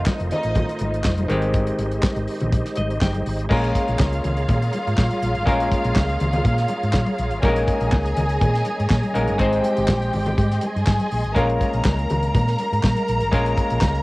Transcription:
Already playing: clav D#3 A3 C4 F4, tonewheel organ A3 D#4 F4 C5 D#5
0.06 kick, snare, clap, high conga
0.20 fingered electric bass F1, closed hi-hat
0.31 string section D#4 D#5, closed hi-hat, low conga
0.43 fingered electric bass A1, closed hi-hat
0.55 kick, closed hi-hat, muted conga, low conga
0.69 closed hi-hat
0.79 fingered electric bass G#1, closed hi-hat, muted conga
0.94 closed hi-hat
1.04 fingered electric bass F1, kick, snare, clap, high conga
1.18 closed hi-hat, high conga
1.28 fingered electric bass G#1, clav D#3 G#3 C4 G4, tonewheel organ G#3 G4, closed hi-hat
1.42 closed hi-hat
1.54 kick, closed hi-hat, muted conga
1.67 closed hi-hat
1.79 fingered electric bass G#1, closed hi-hat, muted conga
1.91 closed hi-hat
2.03 kick, snare, clap, high conga
2.16 fingered electric bass G#1, closed hi-hat
2.28 open hi-hat
2.40 fingered electric bass A#1, closed hi-hat, low conga
2.52 kick, closed hi-hat, muted conga
2.65 snare, closed hi-hat
2.75 fingered electric bass G#1, clav D#5, closed hi-hat, muted conga
2.90 closed hi-hat
3.01 fingered electric bass G1, clav G5, kick, snare, clap, high conga
3.14 closed hi-hat, high conga
3.26 fingered electric bass G#1, open hi-hat
3.39 closed hi-hat
3.49 fingered electric bass A#1, clav G#3 A#3 C#4 F4 A#4, string section F4 F5, tonewheel organ G#4 C#5 F5 A#5, kick, crash, muted conga
3.64 closed hi-hat
3.75 kick, closed hi-hat
3.88 fingered electric bass A#1, closed hi-hat
3.99 fingered electric bass C#2, kick, snare, clap, high conga
4.13 closed hi-hat
4.24 fingered electric bass C#2, closed hi-hat, low conga
4.37 closed hi-hat
4.48 fingered electric bass A#2, kick, closed hi-hat, muted conga, low conga
4.62 closed hi-hat
4.73 closed hi-hat, muted conga
4.87 fingered electric bass G#2, closed hi-hat
4.98 fingered electric bass A#2, kick, snare, clap, high conga
5.11 closed hi-hat, high conga
5.23 fingered electric bass A#1, closed hi-hat
5.35 fingered electric bass G#1, closed hi-hat
5.46 fingered electric bass A#1, clav G#3 A#3 C#4 F4 A#4, kick, closed hi-hat, muted conga
5.60 closed hi-hat
5.71 kick, closed hi-hat, muted conga
5.84 fingered electric bass A#1, closed hi-hat
5.96 fingered electric bass C#2, kick, snare, clap, high conga
6.09 closed hi-hat
6.20 fingered electric bass C#2, closed hi-hat, low conga
6.33 closed hi-hat, low conga
6.45 fingered electric bass A#2, kick, closed hi-hat, muted conga
6.57 snare, closed hi-hat
6.68 closed hi-hat, muted conga
6.83 fingered electric bass G#2, closed hi-hat
6.93 fingered electric bass A#2, kick, snare, clap, high conga
7.06 closed hi-hat, high conga
7.18 fingered electric bass A#1, closed hi-hat
7.30 fingered electric bass G#1, closed hi-hat
7.42 fingered electric bass A#1, clav G3 A#3 C#4 D#4 A#4, tonewheel organ G#4 D#5, string section G#4 G#5, kick, closed hi-hat, muted conga
7.48 clav G#3
7.56 closed hi-hat
7.67 kick, closed hi-hat, muted conga
7.80 fingered electric bass A#1, closed hi-hat
7.92 fingered electric bass C#2, kick, snare, clap, high conga
8.05 closed hi-hat
8.16 fingered electric bass C#2, closed hi-hat, low conga
8.29 closed hi-hat
8.41 fingered electric bass A#2, kick, closed hi-hat, muted conga, low conga
8.54 snare, closed hi-hat
8.65 closed hi-hat, muted conga
8.80 fingered electric bass G#2, closed hi-hat
8.90 fingered electric bass A#2, kick, snare, clap, high conga
9.03 closed hi-hat, high conga
9.14 fingered electric bass A#1, clav G#3 A#3 C#4 D#4 A#4, closed hi-hat
9.28 fingered electric bass G1, closed hi-hat
9.38 fingered electric bass G#1, clav G#3 C4 D#4 G#4 C5, tonewheel organ G#3 D#5 C6, string section G4 G5, kick, closed hi-hat, muted conga
9.53 closed hi-hat
9.64 closed hi-hat, muted conga
9.77 fingered electric bass G#1, closed hi-hat
9.88 fingered electric bass A#1, kick, snare, clap, high conga
10.02 closed hi-hat
10.13 fingered electric bass G#1, open hi-hat, low conga
10.26 closed hi-hat, low conga
10.38 fingered electric bass G#2, kick, closed hi-hat, muted conga
10.51 snare, closed hi-hat
10.61 string section G#4 G#5, closed hi-hat, muted conga
10.76 fingered electric bass G2, closed hi-hat
10.87 fingered electric bass G#2, kick, snare, clap, high conga
11.00 closed hi-hat, high conga
11.11 fingered electric bass A#1, open hi-hat
11.24 fingered electric bass G#1, closed hi-hat
11.35 fingered electric bass A#1, clav G#3 A#3 C#4 F4 A#4, string section A#4 A#5, tonewheel organ F5 A#5, kick, closed hi-hat, muted conga
11.49 closed hi-hat
11.61 kick, closed hi-hat, muted conga
11.74 fingered electric bass A#1, closed hi-hat
11.85 fingered electric bass C#2, kick, snare, clap, high conga
11.99 closed hi-hat
12.10 fingered electric bass C#2, closed hi-hat, low conga
12.23 closed hi-hat
12.35 fingered electric bass A#2, kick, closed hi-hat, muted conga, low conga
12.48 snare, closed hi-hat
12.58 closed hi-hat, muted conga
12.73 fingered electric bass G#2, closed hi-hat
12.83 fingered electric bass A#2, kick, snare, clap, high conga
12.96 closed hi-hat, high conga
13.08 fingered electric bass A#1, closed hi-hat
13.21 fingered electric bass G#1, closed hi-hat
13.32 fingered electric bass A#1, clav G#3 A#3 C#4 F4 A#4, kick, closed hi-hat, muted conga
13.46 closed hi-hat
13.57 kick, closed hi-hat, muted conga
13.70 fingered electric bass A#1, closed hi-hat
13.81 fingered electric bass C#2, kick, snare, clap, high conga
13.95 closed hi-hat

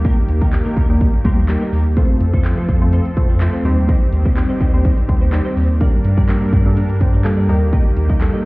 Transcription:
Already playing: analog synth bass D#2, supersaw synth D#3 A#3 G4, analog polysynth G3 A#3 D#4 G4 A#4
0.05 clean electric guitar A#3 D#4 G4 A#4, kick, closed hi-hat
0.17 muted clean electric guitar stroke
0.29 analog synth bass D#2, muted clean electric guitar stroke, closed hi-hat
0.41 clean electric guitar A#3 D#4 G4 A#4, kick, closed hi-hat
0.53 analog polysynth G3 A#3 D#4 G4 A#4, muted clean electric guitar stroke, clap, closed hi-hat
0.65 clean electric guitar A#3 D#4 G4 A#4
0.76 analog synth bass D#2, clean electric guitar A#3 D#4 G4 A#4, kick, closed hi-hat
0.89 analog polysynth G3 A#3 D#4 G4 A#4, muted clean electric guitar stroke
1.01 muted clean electric guitar stroke, kick, closed hi-hat
1.13 muted clean electric guitar stroke
1.24 analog synth bass D#2, analog polysynth G3 A#3 D#4 G4 C5, clean electric guitar A#3 D#4 G4 A#4, kick, closed hi-hat
1.37 clean electric guitar A#3 D#4 G4 A#4
1.49 analog polysynth G3 A#3 D#4 G4 A#4, muted clean electric guitar stroke, clap, closed hi-hat
1.61 clean electric guitar A#3 D#4 G4 A#4
1.73 analog synth bass D#2, clean electric guitar A#3 D#4 G4 A#4, open hi-hat
1.85 muted clean electric guitar stroke
1.97 supersaw synth F3 C4 A4, analog polysynth A3 C4 F4 A4 C5, clean electric guitar C4 F4 A4 C5, kick, closed hi-hat
2.09 muted clean electric guitar stroke
2.21 analog synth bass F2, muted clean electric guitar stroke, closed hi-hat
2.33 clean electric guitar C4 F4 A4 C5, kick
2.45 analog polysynth A3 C4 F4 A4 C5, muted clean electric guitar stroke, clap, closed hi-hat
2.57 clean electric guitar C4 F4 A4 C5
2.68 analog synth bass F2, clean electric guitar C4 F4 A4 C5, kick, closed hi-hat
2.81 analog polysynth A3 C4 F4 A4 C5, muted clean electric guitar stroke
2.92 clean electric guitar C4 F4 A4 C5, closed hi-hat
3.05 muted clean electric guitar stroke, closed hi-hat
3.17 analog synth bass F2, analog polysynth A3 C4 F4 A4 C5, muted clean electric guitar stroke, kick, closed hi-hat
3.29 clean electric guitar C4 F4 A4 C5
3.40 analog polysynth A3 C4 F4 A4 C5, muted clean electric guitar stroke, clap, closed hi-hat
3.53 clean electric guitar C4 F4 A4 C5
3.64 analog synth bass D#2, supersaw synth D#3 G4, analog polysynth G3 C4 D#4 G4 C5, clean electric guitar C4 D#4 G4 C5, open hi-hat
3.77 muted clean electric guitar stroke
3.88 clean electric guitar C4 D#4 G4 C5, kick, closed hi-hat
4.01 muted clean electric guitar stroke
4.13 analog synth bass D#2, muted clean electric guitar stroke, closed hi-hat
4.25 clean electric guitar C4 D#4 G4 C5, kick
4.36 analog polysynth G3 C4 D#4 G4 C5, muted clean electric guitar stroke, clap, closed hi-hat
4.49 clean electric guitar C4 D#4 G4 C5
4.60 analog synth bass D#2, clean electric guitar C4 D#4 G4 C5, kick, closed hi-hat
4.73 analog polysynth G3 C4 D#4 G4 C5, muted clean electric guitar stroke
4.84 clean electric guitar C4 D#4 G4 C5, kick, closed hi-hat
4.97 muted clean electric guitar stroke, closed hi-hat
5.08 analog synth bass D#2, analog polysynth G3 C4 D#4 G4 C5, muted clean electric guitar stroke, kick, closed hi-hat
5.21 clean electric guitar C4 D#4 G4 C5
5.32 analog polysynth G3 C4 D#4 G4 C5, muted clean electric guitar stroke, clap, closed hi-hat
5.45 clean electric guitar C4 D#4 G4 C5
5.56 analog synth bass D#2, clean electric guitar C4 D#4 G4 C5, open hi-hat
5.69 muted clean electric guitar stroke
5.81 analog polysynth G3 A#3 D4 G4 A#4, supersaw synth G3 D4 A#4, clean electric guitar D4 G4 A#4 D5, kick, closed hi-hat
5.93 muted clean electric guitar stroke
6.05 analog synth bass G2, muted clean electric guitar stroke, closed hi-hat
6.17 clean electric guitar D4 G4 A#4 D5, kick
6.29 analog polysynth G3 A#3 D4 G4 A#4, muted clean electric guitar stroke, clap, closed hi-hat
6.41 clean electric guitar D4 G4 A#4 D5
6.53 analog synth bass G2, clean electric guitar D4 G4 A#4 D5, kick, closed hi-hat
6.65 analog polysynth G3 A#3 D4 G4 A4, muted clean electric guitar stroke
6.76 clean electric guitar D4 G4 A#4 D5, closed hi-hat
6.89 muted clean electric guitar stroke, closed hi-hat
7.01 analog synth bass G2, analog polysynth G3 A#3 D4 G4 C5, muted clean electric guitar stroke, kick, closed hi-hat
7.13 clean electric guitar D4 G4 A#4 D5
7.25 analog polysynth G3 A#3 D4 G4 A4, muted clean electric guitar stroke, clap, closed hi-hat
7.37 clean electric guitar D4 G4 A#4 D5
7.48 analog synth bass D#2, supersaw synth D#3 A#3 G4, analog polysynth G3 A#3 D#4 G4 A#4, clean electric guitar D#4 G4 A#4 D#5, open hi-hat
7.61 muted clean electric guitar stroke
7.72 clean electric guitar D#4 G4 A#4 D#5, kick, closed hi-hat
7.85 muted clean electric guitar stroke
7.97 analog synth bass D#2, muted clean electric guitar stroke, closed hi-hat
8.09 clean electric guitar D#4 G4 A#4 D#5, kick, closed hi-hat
8.20 analog polysynth G3 A#3 D#4 G4 A4, clap, closed hi-hat
8.33 clean electric guitar D#4 G4 A#4 D#5

